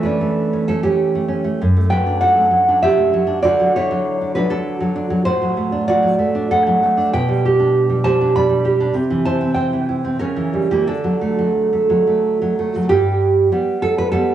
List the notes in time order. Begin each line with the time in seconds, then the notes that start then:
Already playing: E3 A3
0.03 C#4 D4 B4
0.21 A3
0.53 C#4
0.67 A3 C#4 A4
0.83 C#4 G4
1.15 A3
1.28 C#4
1.44 A3
1.62 F#2
1.77 A3
1.90 F#3 B4 G5
2.06 D4
2.21 A4 F#5
2.36 A3
2.51 F#3
2.68 D4
2.82 G4 E5
2.97 A3
3.13 F#3
3.27 D4
3.42 D3 F#4 D5
3.60 F#3
3.76 D4 E4 C#5
3.91 F#3
4.21 D4
4.35 F#3 D4 B4
4.50 D4 A4
4.80 F#3
4.96 D4
5.10 F#3
5.25 A2 F#4 C5
5.42 F#3
5.57 A3
5.72 D4
5.88 F#4 D5
6.03 F#3
6.19 A3
6.35 D4
6.51 A4 F#5
6.67 F#3
6.83 A3
6.97 D4
7.13 B2 B4 G5
7.28 G3
7.45 G4
7.59 D4
7.89 G3
8.04 G4 C5 A5
8.21 D4
8.36 D5 B5
8.49 G3
8.65 G4
8.80 D4
8.94 C3
9.10 E3
9.25 E4 C5 A5
9.41 C4
9.54 C5 G5
9.73 E3
9.89 E4
10.05 C4
10.19 C#3 C#4 A#4
10.36 E3
10.53 G3
10.71 E3 A#3 G4
10.87 D3 D4 A4
11.04 F#3
11.21 A3
11.39 F#3
11.73 A3
11.90 F#3
12.07 A3
12.42 F#3
12.59 A3
12.76 F#3
12.89 G2 G4
13.52 G3 B3
13.82 A4
13.98 B4
14.12 G3 B3 A4